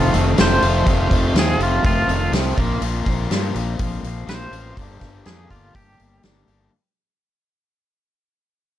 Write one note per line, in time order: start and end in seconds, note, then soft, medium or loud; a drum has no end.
0.00 0.35 D#3 medium
0.00 0.86 D#3 medium
0.00 0.37 A3 medium
0.00 0.37 C4 medium
0.00 0.39 C4 medium
0.00 0.13 F4 medium
0.00 0.39 F4 medium
0.00 0.61 F4 medium
0.13 0.34 F1 medium
0.13 1.34 A3 medium
0.13 open hi-hat soft
0.36 0.58 F1 medium
0.36 0.63 D#3 medium
0.36 0.63 A3 medium
0.36 0.62 C4 medium
0.36 0.61 F4 medium
0.36 snare loud
0.36 open hi-hat medium
0.41 1.33 C5 medium
0.61 0.82 F1 medium
0.61 0.86 D#3 medium
0.61 0.86 A3 medium
0.61 0.88 C4 medium
0.61 0.89 F4 medium
0.61 open hi-hat soft
0.85 1.07 F1 medium
0.85 1.33 F2 medium
0.85 1.34 C3 medium
0.85 1.11 D#3 medium
0.85 1.10 A3 medium
0.85 1.10 C4 medium
0.85 1.09 F4 medium
0.85 kick loud
0.85 open hi-hat medium
1.09 1.31 F1 medium
1.09 1.35 D#3 medium
1.09 1.35 A3 medium
1.09 1.37 C4 medium
1.09 1.38 F4 medium
1.09 kick medium
1.09 open hi-hat soft
1.34 1.55 D#2 medium
1.34 1.83 F2 medium
1.34 1.83 C3 loud
1.34 1.62 D#3 medium
1.34 1.61 A3 medium
1.34 1.60 C4 medium
1.34 1.59 F4 loud
1.34 snare medium
1.34 open hi-hat medium
1.39 1.60 G#4 medium
1.58 1.79 F1 medium
1.58 2.33 A3 medium
1.58 2.34 C4 medium
1.58 2.35 F4 medium
1.58 open hi-hat soft
1.63 2.31 D#3 soft
1.63 1.84 F4 medium
1.84 2.04 F1 medium
1.84 2.56 D#3 medium
1.84 2.32 F4 medium
1.84 kick loud
1.84 open hi-hat medium
2.07 2.28 F1 medium
2.07 2.56 A3 medium
2.07 open hi-hat soft
2.32 2.52 C2 medium
2.32 2.55 D#3 medium
2.32 2.56 A3 medium
2.32 2.56 C4 medium
2.32 snare medium
2.32 open hi-hat medium
2.36 2.56 F4 medium
2.56 2.77 A#1 medium
2.56 2.81 F3 medium
2.56 2.83 A#3 medium
2.56 2.82 C4 medium
2.56 2.84 F4 medium
2.56 kick medium
2.56 open hi-hat soft
2.61 2.80 A#2 medium
2.81 3.01 A#1 medium
2.81 3.28 A#2 medium
2.81 3.30 F3 medium
2.81 3.08 A#3 medium
2.81 3.06 C4 medium
2.81 3.05 F4 medium
2.81 open hi-hat medium
3.05 3.26 A#1 medium
3.05 3.31 A#3 medium
3.05 3.31 C4 medium
3.05 3.33 F4 medium
3.05 kick medium
3.05 open hi-hat soft
3.30 3.51 G2 medium
3.30 3.78 A#2 medium
3.30 4.26 F3 medium
3.30 3.57 A#3 medium
3.30 3.55 C4 medium
3.30 3.54 F4 medium
3.30 snare medium
3.30 open hi-hat medium
3.54 3.75 A#1 medium
3.54 4.28 A#3 soft
3.54 4.28 C4 medium
3.54 4.30 F4 medium
3.54 open hi-hat soft
3.79 4.00 A#1 medium
3.79 kick loud
3.79 open hi-hat medium
4.03 4.23 A#1 medium
4.03 open hi-hat soft
4.27 4.48 A#1 medium
4.27 4.78 F3 medium
4.27 4.55 A#3 medium
4.27 4.53 C4 medium
4.27 4.51 F4 medium
4.27 5.22 C5 medium
4.27 snare medium
4.27 open hi-hat medium
4.51 4.72 A1 medium
4.51 4.75 C4 medium
4.51 4.80 F4 medium
4.51 open hi-hat soft
4.55 4.78 A#3 soft
4.77 4.97 G1 medium
4.77 5.24 G2 medium
4.77 5.25 D3 medium
4.77 5.03 G3 medium
4.77 5.02 A#3 medium
4.77 5.00 D4 medium
4.77 4.99 G4 medium
4.77 kick medium
4.77 open hi-hat medium
5.00 5.21 G1 medium
5.00 5.25 G3 medium
5.00 5.26 A#3 medium
5.00 5.27 D4 medium
5.00 5.27 G4 medium
5.00 kick medium
5.00 snare soft
5.00 open hi-hat soft
5.25 5.46 F2 medium
5.25 5.73 G2 medium
5.25 5.74 D3 medium
5.25 5.53 G3 medium
5.25 5.51 A#3 medium
5.25 5.50 D4 medium
5.25 5.49 G4 medium
5.25 5.49 G#4 medium
5.25 snare medium
5.25 open hi-hat soft
5.50 5.70 G1 medium
5.50 6.22 G3 soft
5.50 6.23 A#3 soft
5.50 6.24 D4 soft
5.50 5.73 F4 medium
5.50 6.26 G4 medium
5.50 kick medium
5.50 open hi-hat soft
5.75 5.95 G1 medium
5.75 6.21 G4 medium
5.75 kick loud
5.75 open hi-hat medium
6.00 6.19 G1 medium
6.00 open hi-hat soft
6.23 6.44 G1 medium
6.23 6.49 G3 medium
6.23 6.48 A#3 medium
6.23 6.47 D4 medium
6.23 6.45 G4 medium
6.23 snare medium
6.23 open hi-hat medium
6.47 6.68 G1 medium
6.47 6.71 G3 soft
6.47 6.71 A#3 soft
6.47 6.70 D4 medium
6.47 6.69 G4 medium
6.47 open hi-hat soft